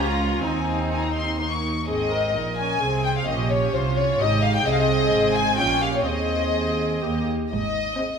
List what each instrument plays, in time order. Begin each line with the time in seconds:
Already playing: double bass section C#2, cello section C#2, viola section C#4 F4, violin section A#5
0.06 violin section F4
0.42 cello section D#2, double bass section D#2, viola section C4 D#4, violin section D#4 G#5
0.92 violin section G#5
1.05 violin section A#5
1.15 violin section C6
1.39 viola section A#3 D#4, violin section C6
1.51 violin section C#6
1.87 double bass section G#1, cello section G#2, viola section C4 G#4, violin section D#5
2.12 viola section A#4
2.35 double bass section A#1, cello section A#2, viola section D#4
2.58 viola section C#4, violin section G#5
2.81 double bass section C2, cello section C3, viola section C4 G#4
3.04 violin section G5
3.16 violin section F5
3.26 double bass section A#1, cello section A#2, viola section C#4 G4, violin section D#5
3.51 violin section C#5
3.74 double bass section C2, cello section C3, viola section F4, violin section C5
3.97 violin section C#5
4.20 double bass section G#1, cello section G#2, viola section D#4 G4, violin section D#5
4.43 violin section F5
4.55 violin section G5
4.66 double bass section C2, cello section C3, viola section C4 G#4, violin section D#5
4.72 violin section F5
4.80 violin section D#5
5.12 double bass section G#1, cello section G#2
5.34 violin section G#5
5.58 double bass section A#1, cello section A#2, viola section C#4 F4, violin section G5
5.83 viola section G4, violin section F5
5.94 violin section C#5
6.06 double bass section D#2, cello section D#2, viola section C4 G#4, violin section D#5
7.01 double bass section D#2, cello section D#2, viola section A#3 G4
7.51 double bass section G#1, cello section G#2, violin section D#5
8.00 viola section C4 G#4